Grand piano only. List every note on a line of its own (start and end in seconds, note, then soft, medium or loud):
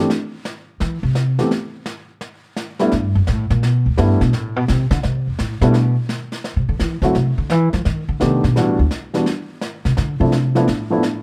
1.38 1.49 E3 medium
1.38 1.50 A3 soft
1.38 1.50 B3 soft
1.38 1.50 C4 soft
1.38 1.50 G4 medium
2.80 2.91 G3 medium
2.80 2.91 A3 medium
2.80 2.91 B3 medium
2.80 2.91 D4 medium
2.80 2.91 E4 medium
3.97 4.18 G3 medium
3.97 4.19 A3 medium
3.97 4.19 B3 medium
3.97 4.19 D4 medium
3.97 4.19 E4 medium
5.62 5.73 G3 medium
5.62 5.73 A3 medium
5.62 5.73 B3 medium
5.62 5.73 D4 medium
5.62 5.74 E4 medium
7.03 7.14 F#3 medium
7.03 7.14 A3 medium
7.03 7.14 C4 medium
7.03 7.14 E4 medium
7.03 7.14 F#4 medium
8.20 8.41 D#3 medium
8.20 8.41 A3 soft
8.20 8.41 B3 medium
8.20 8.42 D4 medium
8.20 8.42 G4 medium
8.56 8.77 E3 medium
8.56 8.77 G3 medium
8.56 8.77 B3 medium
8.56 8.77 D4 medium
8.56 8.78 F#4 medium
9.14 9.25 E3 medium
9.14 9.25 G3 medium
9.14 9.25 B3 medium
9.14 9.25 D4 medium
9.14 9.26 F#4 medium
10.20 10.31 F3 medium
10.20 10.31 A3 soft
10.20 10.31 C4 soft
10.20 10.31 D4 soft
10.20 10.31 E4 medium
10.55 10.66 F3 medium
10.55 10.66 A3 medium
10.55 10.66 B3 medium
10.55 10.67 D4 medium
10.55 10.67 E4 medium
10.90 11.01 F3 medium
10.90 11.02 A3 medium
10.90 11.02 B3 medium
10.90 11.02 D4 medium
10.90 11.02 E4 medium